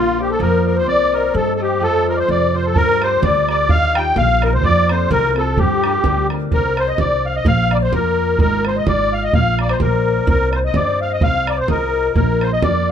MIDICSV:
0, 0, Header, 1, 6, 480
1, 0, Start_track
1, 0, Key_signature, -2, "minor"
1, 0, Tempo, 470219
1, 891, Time_signature, 2, 2, 24, 8
1, 6655, Key_signature, -3, "minor"
1, 13186, End_track
2, 0, Start_track
2, 0, Title_t, "Accordion"
2, 0, Program_c, 0, 21
2, 0, Note_on_c, 0, 65, 100
2, 212, Note_off_c, 0, 65, 0
2, 216, Note_on_c, 0, 67, 73
2, 316, Note_off_c, 0, 67, 0
2, 321, Note_on_c, 0, 69, 84
2, 423, Note_off_c, 0, 69, 0
2, 424, Note_on_c, 0, 70, 89
2, 668, Note_off_c, 0, 70, 0
2, 684, Note_on_c, 0, 70, 72
2, 791, Note_off_c, 0, 70, 0
2, 796, Note_on_c, 0, 72, 83
2, 890, Note_off_c, 0, 72, 0
2, 897, Note_on_c, 0, 74, 108
2, 1162, Note_on_c, 0, 70, 80
2, 1167, Note_off_c, 0, 74, 0
2, 1381, Note_off_c, 0, 70, 0
2, 1387, Note_on_c, 0, 69, 86
2, 1565, Note_off_c, 0, 69, 0
2, 1591, Note_on_c, 0, 69, 62
2, 1647, Note_off_c, 0, 69, 0
2, 1654, Note_on_c, 0, 67, 82
2, 1868, Note_off_c, 0, 67, 0
2, 1871, Note_on_c, 0, 69, 105
2, 2109, Note_off_c, 0, 69, 0
2, 2136, Note_on_c, 0, 70, 80
2, 2210, Note_off_c, 0, 70, 0
2, 2211, Note_on_c, 0, 74, 58
2, 2231, Note_off_c, 0, 74, 0
2, 2244, Note_on_c, 0, 72, 88
2, 2345, Note_off_c, 0, 72, 0
2, 2351, Note_on_c, 0, 74, 87
2, 2605, Note_on_c, 0, 72, 76
2, 2614, Note_off_c, 0, 74, 0
2, 2713, Note_off_c, 0, 72, 0
2, 2717, Note_on_c, 0, 69, 90
2, 2822, Note_off_c, 0, 69, 0
2, 2823, Note_on_c, 0, 70, 124
2, 3091, Note_off_c, 0, 70, 0
2, 3092, Note_on_c, 0, 72, 89
2, 3303, Note_on_c, 0, 74, 90
2, 3307, Note_off_c, 0, 72, 0
2, 3555, Note_off_c, 0, 74, 0
2, 3570, Note_on_c, 0, 74, 100
2, 3778, Note_on_c, 0, 77, 120
2, 3786, Note_off_c, 0, 74, 0
2, 4045, Note_on_c, 0, 79, 93
2, 4049, Note_off_c, 0, 77, 0
2, 4263, Note_on_c, 0, 77, 108
2, 4264, Note_off_c, 0, 79, 0
2, 4531, Note_off_c, 0, 77, 0
2, 4535, Note_on_c, 0, 70, 88
2, 4628, Note_off_c, 0, 70, 0
2, 4638, Note_on_c, 0, 72, 75
2, 4742, Note_on_c, 0, 74, 121
2, 4743, Note_off_c, 0, 72, 0
2, 5009, Note_on_c, 0, 72, 88
2, 5010, Note_off_c, 0, 74, 0
2, 5205, Note_off_c, 0, 72, 0
2, 5223, Note_on_c, 0, 70, 111
2, 5465, Note_off_c, 0, 70, 0
2, 5489, Note_on_c, 0, 69, 89
2, 5705, Note_on_c, 0, 67, 90
2, 5706, Note_off_c, 0, 69, 0
2, 6404, Note_off_c, 0, 67, 0
2, 6669, Note_on_c, 0, 70, 99
2, 6933, Note_on_c, 0, 72, 87
2, 6934, Note_off_c, 0, 70, 0
2, 7033, Note_on_c, 0, 75, 86
2, 7037, Note_off_c, 0, 72, 0
2, 7139, Note_on_c, 0, 74, 94
2, 7141, Note_off_c, 0, 75, 0
2, 7406, Note_on_c, 0, 77, 80
2, 7409, Note_off_c, 0, 74, 0
2, 7513, Note_off_c, 0, 77, 0
2, 7515, Note_on_c, 0, 75, 87
2, 7622, Note_off_c, 0, 75, 0
2, 7628, Note_on_c, 0, 77, 123
2, 7893, Note_off_c, 0, 77, 0
2, 7893, Note_on_c, 0, 74, 85
2, 7938, Note_off_c, 0, 74, 0
2, 7999, Note_on_c, 0, 72, 85
2, 8104, Note_off_c, 0, 72, 0
2, 8107, Note_on_c, 0, 70, 93
2, 8572, Note_off_c, 0, 70, 0
2, 8588, Note_on_c, 0, 70, 106
2, 8827, Note_off_c, 0, 70, 0
2, 8856, Note_on_c, 0, 72, 85
2, 8958, Note_off_c, 0, 72, 0
2, 8960, Note_on_c, 0, 75, 80
2, 9054, Note_off_c, 0, 75, 0
2, 9061, Note_on_c, 0, 74, 105
2, 9320, Note_on_c, 0, 77, 96
2, 9330, Note_off_c, 0, 74, 0
2, 9430, Note_off_c, 0, 77, 0
2, 9434, Note_on_c, 0, 75, 92
2, 9530, Note_off_c, 0, 75, 0
2, 9540, Note_on_c, 0, 77, 108
2, 9783, Note_off_c, 0, 77, 0
2, 9810, Note_on_c, 0, 74, 75
2, 9910, Note_on_c, 0, 72, 92
2, 9914, Note_off_c, 0, 74, 0
2, 10008, Note_off_c, 0, 72, 0
2, 10025, Note_on_c, 0, 70, 86
2, 10489, Note_off_c, 0, 70, 0
2, 10505, Note_on_c, 0, 70, 103
2, 10714, Note_off_c, 0, 70, 0
2, 10730, Note_on_c, 0, 70, 50
2, 10760, Note_off_c, 0, 70, 0
2, 10765, Note_on_c, 0, 72, 76
2, 10812, Note_off_c, 0, 72, 0
2, 10880, Note_on_c, 0, 75, 88
2, 10981, Note_on_c, 0, 74, 90
2, 10983, Note_off_c, 0, 75, 0
2, 11223, Note_off_c, 0, 74, 0
2, 11248, Note_on_c, 0, 77, 84
2, 11353, Note_off_c, 0, 77, 0
2, 11360, Note_on_c, 0, 75, 76
2, 11462, Note_off_c, 0, 75, 0
2, 11467, Note_on_c, 0, 77, 109
2, 11731, Note_off_c, 0, 77, 0
2, 11734, Note_on_c, 0, 74, 74
2, 11825, Note_off_c, 0, 74, 0
2, 11842, Note_on_c, 0, 72, 87
2, 11933, Note_off_c, 0, 72, 0
2, 11951, Note_on_c, 0, 70, 93
2, 12401, Note_off_c, 0, 70, 0
2, 12417, Note_on_c, 0, 70, 89
2, 12682, Note_on_c, 0, 72, 80
2, 12685, Note_off_c, 0, 70, 0
2, 12778, Note_off_c, 0, 72, 0
2, 12788, Note_on_c, 0, 75, 92
2, 12894, Note_on_c, 0, 74, 90
2, 12895, Note_off_c, 0, 75, 0
2, 13163, Note_off_c, 0, 74, 0
2, 13186, End_track
3, 0, Start_track
3, 0, Title_t, "Flute"
3, 0, Program_c, 1, 73
3, 0, Note_on_c, 1, 65, 72
3, 179, Note_off_c, 1, 65, 0
3, 201, Note_on_c, 1, 67, 84
3, 306, Note_on_c, 1, 69, 67
3, 321, Note_off_c, 1, 67, 0
3, 408, Note_off_c, 1, 69, 0
3, 414, Note_on_c, 1, 70, 80
3, 659, Note_off_c, 1, 70, 0
3, 674, Note_on_c, 1, 70, 82
3, 781, Note_on_c, 1, 72, 68
3, 796, Note_off_c, 1, 70, 0
3, 887, Note_off_c, 1, 72, 0
3, 893, Note_on_c, 1, 74, 93
3, 1374, Note_on_c, 1, 69, 87
3, 1389, Note_off_c, 1, 74, 0
3, 1638, Note_off_c, 1, 69, 0
3, 1646, Note_on_c, 1, 67, 71
3, 1858, Note_on_c, 1, 69, 71
3, 1873, Note_off_c, 1, 67, 0
3, 2228, Note_off_c, 1, 69, 0
3, 2233, Note_on_c, 1, 72, 69
3, 2330, Note_off_c, 1, 72, 0
3, 2337, Note_on_c, 1, 74, 90
3, 2600, Note_on_c, 1, 72, 78
3, 2615, Note_off_c, 1, 74, 0
3, 2700, Note_off_c, 1, 72, 0
3, 2706, Note_on_c, 1, 69, 72
3, 2810, Note_on_c, 1, 70, 80
3, 2825, Note_off_c, 1, 69, 0
3, 3085, Note_on_c, 1, 72, 89
3, 3100, Note_off_c, 1, 70, 0
3, 3290, Note_off_c, 1, 72, 0
3, 3296, Note_on_c, 1, 74, 86
3, 3541, Note_off_c, 1, 74, 0
3, 3558, Note_on_c, 1, 74, 81
3, 3759, Note_off_c, 1, 74, 0
3, 3772, Note_on_c, 1, 77, 88
3, 4039, Note_on_c, 1, 79, 100
3, 4054, Note_off_c, 1, 77, 0
3, 4261, Note_on_c, 1, 77, 100
3, 4276, Note_off_c, 1, 79, 0
3, 4525, Note_on_c, 1, 70, 75
3, 4540, Note_off_c, 1, 77, 0
3, 4625, Note_on_c, 1, 72, 72
3, 4641, Note_off_c, 1, 70, 0
3, 4726, Note_off_c, 1, 72, 0
3, 4732, Note_on_c, 1, 74, 86
3, 5211, Note_on_c, 1, 70, 81
3, 5226, Note_off_c, 1, 74, 0
3, 5477, Note_off_c, 1, 70, 0
3, 5686, Note_on_c, 1, 67, 94
3, 6394, Note_off_c, 1, 67, 0
3, 6653, Note_on_c, 1, 70, 79
3, 6920, Note_on_c, 1, 72, 73
3, 6936, Note_off_c, 1, 70, 0
3, 7022, Note_on_c, 1, 75, 77
3, 7038, Note_off_c, 1, 72, 0
3, 7141, Note_on_c, 1, 74, 80
3, 7156, Note_off_c, 1, 75, 0
3, 7402, Note_off_c, 1, 74, 0
3, 7415, Note_on_c, 1, 77, 83
3, 7500, Note_off_c, 1, 77, 0
3, 7506, Note_on_c, 1, 75, 66
3, 7607, Note_off_c, 1, 75, 0
3, 7614, Note_on_c, 1, 77, 95
3, 7882, Note_on_c, 1, 74, 94
3, 7898, Note_off_c, 1, 77, 0
3, 7987, Note_on_c, 1, 72, 82
3, 8002, Note_off_c, 1, 74, 0
3, 8094, Note_on_c, 1, 70, 89
3, 8109, Note_off_c, 1, 72, 0
3, 8564, Note_off_c, 1, 70, 0
3, 8571, Note_on_c, 1, 70, 74
3, 8838, Note_on_c, 1, 72, 85
3, 8853, Note_off_c, 1, 70, 0
3, 8946, Note_on_c, 1, 75, 69
3, 8961, Note_off_c, 1, 72, 0
3, 9045, Note_off_c, 1, 75, 0
3, 9051, Note_on_c, 1, 74, 81
3, 9420, Note_on_c, 1, 75, 78
3, 9436, Note_off_c, 1, 74, 0
3, 9527, Note_on_c, 1, 77, 98
3, 9542, Note_off_c, 1, 75, 0
3, 9899, Note_on_c, 1, 72, 68
3, 9914, Note_off_c, 1, 77, 0
3, 10010, Note_off_c, 1, 72, 0
3, 10017, Note_on_c, 1, 70, 85
3, 10461, Note_off_c, 1, 70, 0
3, 10503, Note_on_c, 1, 70, 77
3, 10723, Note_on_c, 1, 74, 58
3, 10738, Note_off_c, 1, 70, 0
3, 10750, Note_on_c, 1, 72, 79
3, 10766, Note_off_c, 1, 74, 0
3, 10864, Note_on_c, 1, 75, 76
3, 10879, Note_off_c, 1, 72, 0
3, 10968, Note_on_c, 1, 74, 88
3, 10984, Note_off_c, 1, 75, 0
3, 11234, Note_on_c, 1, 77, 77
3, 11249, Note_off_c, 1, 74, 0
3, 11331, Note_on_c, 1, 75, 68
3, 11346, Note_off_c, 1, 77, 0
3, 11431, Note_off_c, 1, 75, 0
3, 11438, Note_on_c, 1, 77, 75
3, 11689, Note_off_c, 1, 77, 0
3, 11705, Note_on_c, 1, 74, 89
3, 11812, Note_on_c, 1, 72, 75
3, 11827, Note_off_c, 1, 74, 0
3, 11920, Note_on_c, 1, 70, 74
3, 11935, Note_off_c, 1, 72, 0
3, 12404, Note_off_c, 1, 70, 0
3, 12408, Note_on_c, 1, 70, 76
3, 12754, Note_off_c, 1, 70, 0
3, 12784, Note_on_c, 1, 75, 71
3, 12895, Note_on_c, 1, 74, 72
3, 12910, Note_off_c, 1, 75, 0
3, 13156, Note_off_c, 1, 74, 0
3, 13186, End_track
4, 0, Start_track
4, 0, Title_t, "Harp"
4, 0, Program_c, 2, 46
4, 0, Note_on_c, 2, 58, 67
4, 0, Note_on_c, 2, 60, 45
4, 0, Note_on_c, 2, 62, 42
4, 0, Note_on_c, 2, 67, 33
4, 0, Note_on_c, 2, 70, 42
4, 178, Note_off_c, 2, 70, 0
4, 182, Note_on_c, 2, 70, 46
4, 183, Note_on_c, 2, 72, 41
4, 194, Note_on_c, 2, 74, 52
4, 403, Note_on_c, 2, 53, 71
4, 664, Note_off_c, 2, 70, 0
4, 668, Note_on_c, 2, 70, 44
4, 669, Note_off_c, 2, 72, 0
4, 671, Note_off_c, 2, 74, 0
4, 673, Note_on_c, 2, 72, 37
4, 675, Note_on_c, 2, 74, 48
4, 846, Note_off_c, 2, 60, 0
4, 886, Note_on_c, 2, 60, 66
4, 942, Note_off_c, 2, 53, 0
4, 1136, Note_off_c, 2, 72, 0
4, 1140, Note_on_c, 2, 72, 46
4, 1142, Note_off_c, 2, 74, 0
4, 1146, Note_on_c, 2, 74, 43
4, 1149, Note_on_c, 2, 75, 53
4, 1211, Note_off_c, 2, 62, 0
4, 1362, Note_on_c, 2, 55, 74
4, 1616, Note_off_c, 2, 72, 0
4, 1620, Note_on_c, 2, 72, 46
4, 1621, Note_off_c, 2, 74, 0
4, 1625, Note_on_c, 2, 74, 36
4, 1626, Note_off_c, 2, 75, 0
4, 1630, Note_on_c, 2, 75, 43
4, 1840, Note_on_c, 2, 53, 77
4, 1904, Note_off_c, 2, 55, 0
4, 2110, Note_off_c, 2, 67, 0
4, 2115, Note_on_c, 2, 65, 42
4, 2117, Note_on_c, 2, 69, 35
4, 2118, Note_off_c, 2, 72, 0
4, 2122, Note_on_c, 2, 72, 51
4, 2179, Note_off_c, 2, 58, 0
4, 2179, Note_off_c, 2, 70, 0
4, 2335, Note_on_c, 2, 48, 71
4, 2384, Note_off_c, 2, 53, 0
4, 2588, Note_off_c, 2, 65, 0
4, 2592, Note_on_c, 2, 65, 43
4, 2598, Note_off_c, 2, 69, 0
4, 2602, Note_on_c, 2, 69, 37
4, 2603, Note_off_c, 2, 72, 0
4, 2607, Note_on_c, 2, 72, 50
4, 2822, Note_on_c, 2, 55, 70
4, 2865, Note_off_c, 2, 48, 0
4, 3069, Note_on_c, 2, 67, 46
4, 3087, Note_on_c, 2, 70, 40
4, 3098, Note_off_c, 2, 74, 0
4, 3103, Note_on_c, 2, 74, 48
4, 3148, Note_off_c, 2, 69, 0
4, 3164, Note_off_c, 2, 75, 0
4, 3305, Note_on_c, 2, 50, 62
4, 3345, Note_off_c, 2, 55, 0
4, 3565, Note_off_c, 2, 67, 0
4, 3570, Note_on_c, 2, 67, 44
4, 3572, Note_off_c, 2, 70, 0
4, 3575, Note_off_c, 2, 74, 0
4, 3576, Note_on_c, 2, 70, 36
4, 3579, Note_on_c, 2, 74, 46
4, 3784, Note_on_c, 2, 51, 76
4, 3825, Note_off_c, 2, 50, 0
4, 3845, Note_off_c, 2, 74, 0
4, 3948, Note_off_c, 2, 60, 0
4, 4047, Note_on_c, 2, 63, 44
4, 4048, Note_off_c, 2, 65, 0
4, 4050, Note_off_c, 2, 67, 0
4, 4052, Note_on_c, 2, 65, 37
4, 4054, Note_on_c, 2, 67, 51
4, 4267, Note_on_c, 2, 58, 61
4, 4517, Note_off_c, 2, 63, 0
4, 4521, Note_on_c, 2, 63, 44
4, 4524, Note_off_c, 2, 65, 0
4, 4526, Note_off_c, 2, 67, 0
4, 4528, Note_on_c, 2, 65, 45
4, 4530, Note_on_c, 2, 67, 47
4, 4627, Note_off_c, 2, 72, 0
4, 4734, Note_on_c, 2, 53, 74
4, 4786, Note_off_c, 2, 51, 0
4, 5003, Note_off_c, 2, 65, 0
4, 5004, Note_on_c, 2, 60, 52
4, 5007, Note_on_c, 2, 65, 43
4, 5017, Note_on_c, 2, 69, 44
4, 5079, Note_off_c, 2, 58, 0
4, 5079, Note_off_c, 2, 70, 0
4, 5217, Note_on_c, 2, 48, 76
4, 5266, Note_off_c, 2, 53, 0
4, 5474, Note_off_c, 2, 60, 0
4, 5475, Note_off_c, 2, 65, 0
4, 5478, Note_on_c, 2, 60, 49
4, 5479, Note_on_c, 2, 65, 41
4, 5485, Note_off_c, 2, 69, 0
4, 5489, Note_on_c, 2, 69, 52
4, 5696, Note_on_c, 2, 55, 76
4, 5746, Note_off_c, 2, 48, 0
4, 5964, Note_off_c, 2, 67, 0
4, 5964, Note_on_c, 2, 62, 48
4, 5968, Note_on_c, 2, 67, 36
4, 5979, Note_on_c, 2, 70, 51
4, 6026, Note_off_c, 2, 63, 0
4, 6040, Note_off_c, 2, 69, 0
4, 6183, Note_on_c, 2, 50, 65
4, 6226, Note_off_c, 2, 55, 0
4, 6431, Note_off_c, 2, 62, 0
4, 6435, Note_on_c, 2, 62, 46
4, 6440, Note_off_c, 2, 67, 0
4, 6442, Note_off_c, 2, 70, 0
4, 6444, Note_on_c, 2, 67, 41
4, 6446, Note_on_c, 2, 70, 49
4, 6663, Note_on_c, 2, 48, 63
4, 6706, Note_off_c, 2, 50, 0
4, 7128, Note_off_c, 2, 60, 0
4, 7132, Note_on_c, 2, 60, 44
4, 7135, Note_off_c, 2, 62, 0
4, 7139, Note_on_c, 2, 62, 44
4, 7142, Note_off_c, 2, 67, 0
4, 7146, Note_on_c, 2, 67, 53
4, 7612, Note_on_c, 2, 58, 68
4, 7666, Note_off_c, 2, 48, 0
4, 8054, Note_off_c, 2, 65, 0
4, 8087, Note_on_c, 2, 65, 47
4, 8088, Note_off_c, 2, 70, 0
4, 8092, Note_on_c, 2, 70, 43
4, 8094, Note_on_c, 2, 74, 55
4, 8569, Note_on_c, 2, 56, 69
4, 8630, Note_off_c, 2, 67, 0
4, 9041, Note_off_c, 2, 65, 0
4, 9045, Note_on_c, 2, 65, 50
4, 9049, Note_on_c, 2, 63, 50
4, 9052, Note_on_c, 2, 68, 43
4, 9111, Note_off_c, 2, 62, 0
4, 9111, Note_off_c, 2, 74, 0
4, 9523, Note_off_c, 2, 58, 0
4, 9527, Note_on_c, 2, 58, 67
4, 9585, Note_off_c, 2, 56, 0
4, 9994, Note_off_c, 2, 70, 0
4, 9998, Note_on_c, 2, 70, 50
4, 10006, Note_on_c, 2, 72, 47
4, 10013, Note_on_c, 2, 74, 57
4, 10074, Note_off_c, 2, 63, 0
4, 10195, Note_off_c, 2, 60, 0
4, 10488, Note_on_c, 2, 60, 67
4, 10970, Note_off_c, 2, 72, 0
4, 10973, Note_on_c, 2, 67, 49
4, 10975, Note_on_c, 2, 72, 49
4, 10985, Note_on_c, 2, 75, 51
4, 11035, Note_off_c, 2, 68, 0
4, 11046, Note_off_c, 2, 74, 0
4, 11446, Note_off_c, 2, 60, 0
4, 11450, Note_on_c, 2, 60, 69
4, 11620, Note_off_c, 2, 65, 0
4, 11923, Note_on_c, 2, 65, 43
4, 11927, Note_on_c, 2, 68, 43
4, 11932, Note_off_c, 2, 75, 0
4, 11936, Note_on_c, 2, 75, 56
4, 11989, Note_off_c, 2, 67, 0
4, 12164, Note_off_c, 2, 70, 0
4, 12399, Note_off_c, 2, 58, 0
4, 12403, Note_on_c, 2, 58, 70
4, 12877, Note_off_c, 2, 65, 0
4, 12881, Note_on_c, 2, 65, 47
4, 12891, Note_on_c, 2, 70, 48
4, 12894, Note_on_c, 2, 74, 53
4, 12955, Note_off_c, 2, 75, 0
4, 12995, Note_off_c, 2, 72, 0
4, 13186, Note_off_c, 2, 58, 0
4, 13186, Note_off_c, 2, 60, 0
4, 13186, Note_off_c, 2, 65, 0
4, 13186, Note_off_c, 2, 68, 0
4, 13186, Note_off_c, 2, 70, 0
4, 13186, Note_off_c, 2, 74, 0
4, 13186, End_track
5, 0, Start_track
5, 0, Title_t, "Upright bass"
5, 0, Program_c, 3, 32
5, 0, Note_on_c, 3, 34, 96
5, 338, Note_off_c, 3, 34, 0
5, 406, Note_on_c, 3, 41, 84
5, 891, Note_off_c, 3, 41, 0
5, 891, Note_on_c, 3, 36, 88
5, 1302, Note_off_c, 3, 36, 0
5, 1373, Note_on_c, 3, 43, 86
5, 1854, Note_off_c, 3, 43, 0
5, 1854, Note_on_c, 3, 41, 90
5, 2264, Note_off_c, 3, 41, 0
5, 2332, Note_on_c, 3, 41, 78
5, 2813, Note_off_c, 3, 41, 0
5, 2813, Note_on_c, 3, 43, 78
5, 3224, Note_off_c, 3, 43, 0
5, 3291, Note_on_c, 3, 38, 87
5, 3773, Note_off_c, 3, 38, 0
5, 3773, Note_on_c, 3, 39, 94
5, 4184, Note_off_c, 3, 39, 0
5, 4251, Note_on_c, 3, 34, 85
5, 4735, Note_off_c, 3, 34, 0
5, 4735, Note_on_c, 3, 41, 94
5, 5146, Note_off_c, 3, 41, 0
5, 5215, Note_on_c, 3, 36, 97
5, 5691, Note_on_c, 3, 43, 89
5, 5706, Note_off_c, 3, 36, 0
5, 6103, Note_off_c, 3, 43, 0
5, 6173, Note_on_c, 3, 38, 84
5, 6584, Note_off_c, 3, 38, 0
5, 6653, Note_on_c, 3, 36, 84
5, 7064, Note_off_c, 3, 36, 0
5, 7136, Note_on_c, 3, 36, 76
5, 7546, Note_off_c, 3, 36, 0
5, 7614, Note_on_c, 3, 34, 98
5, 8024, Note_off_c, 3, 34, 0
5, 8091, Note_on_c, 3, 41, 87
5, 8503, Note_off_c, 3, 41, 0
5, 8571, Note_on_c, 3, 32, 85
5, 8983, Note_off_c, 3, 32, 0
5, 9051, Note_on_c, 3, 32, 81
5, 9462, Note_off_c, 3, 32, 0
5, 9529, Note_on_c, 3, 34, 85
5, 9941, Note_off_c, 3, 34, 0
5, 10010, Note_on_c, 3, 34, 77
5, 10421, Note_off_c, 3, 34, 0
5, 10485, Note_on_c, 3, 36, 94
5, 10898, Note_off_c, 3, 36, 0
5, 10968, Note_on_c, 3, 43, 82
5, 11380, Note_off_c, 3, 43, 0
5, 11450, Note_on_c, 3, 36, 83
5, 11860, Note_off_c, 3, 36, 0
5, 11932, Note_on_c, 3, 36, 74
5, 12341, Note_off_c, 3, 36, 0
5, 12408, Note_on_c, 3, 34, 88
5, 12818, Note_off_c, 3, 34, 0
5, 12888, Note_on_c, 3, 41, 88
5, 13186, Note_off_c, 3, 41, 0
5, 13186, End_track
6, 0, Start_track
6, 0, Title_t, "Bodhran"
6, 2814, Note_on_c, 9, 64, 77
6, 2916, Note_off_c, 9, 64, 0
6, 3080, Note_on_c, 9, 64, 69
6, 3182, Note_off_c, 9, 64, 0
6, 3296, Note_on_c, 9, 64, 87
6, 3398, Note_off_c, 9, 64, 0
6, 3558, Note_on_c, 9, 64, 59
6, 3660, Note_off_c, 9, 64, 0
6, 3769, Note_on_c, 9, 64, 95
6, 3871, Note_off_c, 9, 64, 0
6, 3909, Note_on_c, 9, 64, 25
6, 4011, Note_off_c, 9, 64, 0
6, 4036, Note_on_c, 9, 64, 80
6, 4138, Note_off_c, 9, 64, 0
6, 4247, Note_on_c, 9, 64, 78
6, 4350, Note_off_c, 9, 64, 0
6, 4513, Note_on_c, 9, 64, 61
6, 4615, Note_off_c, 9, 64, 0
6, 4729, Note_on_c, 9, 64, 80
6, 4831, Note_off_c, 9, 64, 0
6, 4996, Note_on_c, 9, 64, 68
6, 5098, Note_off_c, 9, 64, 0
6, 5212, Note_on_c, 9, 64, 83
6, 5314, Note_off_c, 9, 64, 0
6, 5471, Note_on_c, 9, 64, 59
6, 5573, Note_off_c, 9, 64, 0
6, 5689, Note_on_c, 9, 64, 83
6, 5792, Note_off_c, 9, 64, 0
6, 5958, Note_on_c, 9, 64, 66
6, 6060, Note_off_c, 9, 64, 0
6, 6164, Note_on_c, 9, 64, 89
6, 6266, Note_off_c, 9, 64, 0
6, 6433, Note_on_c, 9, 64, 57
6, 6535, Note_off_c, 9, 64, 0
6, 6651, Note_on_c, 9, 64, 84
6, 6753, Note_off_c, 9, 64, 0
6, 6913, Note_on_c, 9, 64, 66
6, 7015, Note_off_c, 9, 64, 0
6, 7127, Note_on_c, 9, 64, 84
6, 7229, Note_off_c, 9, 64, 0
6, 7603, Note_on_c, 9, 64, 84
6, 7705, Note_off_c, 9, 64, 0
6, 7872, Note_on_c, 9, 64, 67
6, 7974, Note_off_c, 9, 64, 0
6, 8091, Note_on_c, 9, 64, 84
6, 8193, Note_off_c, 9, 64, 0
6, 8560, Note_on_c, 9, 64, 88
6, 8663, Note_off_c, 9, 64, 0
6, 8826, Note_on_c, 9, 64, 62
6, 8928, Note_off_c, 9, 64, 0
6, 9050, Note_on_c, 9, 64, 84
6, 9152, Note_off_c, 9, 64, 0
6, 9527, Note_on_c, 9, 64, 86
6, 9629, Note_off_c, 9, 64, 0
6, 9786, Note_on_c, 9, 64, 58
6, 9888, Note_off_c, 9, 64, 0
6, 9896, Note_on_c, 9, 64, 65
6, 9998, Note_off_c, 9, 64, 0
6, 10003, Note_on_c, 9, 64, 81
6, 10105, Note_off_c, 9, 64, 0
6, 10487, Note_on_c, 9, 64, 78
6, 10589, Note_off_c, 9, 64, 0
6, 10746, Note_on_c, 9, 64, 62
6, 10849, Note_off_c, 9, 64, 0
6, 10963, Note_on_c, 9, 64, 89
6, 11065, Note_off_c, 9, 64, 0
6, 11444, Note_on_c, 9, 64, 88
6, 11546, Note_off_c, 9, 64, 0
6, 11712, Note_on_c, 9, 64, 75
6, 11814, Note_off_c, 9, 64, 0
6, 11925, Note_on_c, 9, 64, 83
6, 12027, Note_off_c, 9, 64, 0
6, 12408, Note_on_c, 9, 64, 84
6, 12510, Note_off_c, 9, 64, 0
6, 12671, Note_on_c, 9, 64, 68
6, 12773, Note_off_c, 9, 64, 0
6, 12887, Note_on_c, 9, 64, 85
6, 12989, Note_off_c, 9, 64, 0
6, 13186, End_track
0, 0, End_of_file